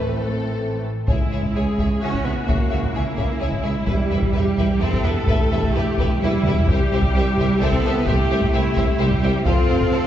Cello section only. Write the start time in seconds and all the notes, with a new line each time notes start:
Already playing: A2
1.08 G#3
2.01 C#4
2.24 B3
2.47 A#3
3.41 G#3
3.87 G3
4.81 C4
5.04 B3
5.28 A3
6.20 G3
6.67 G3
7.60 C4
7.83 B3
8.06 A3
8.99 G3
9.45 C4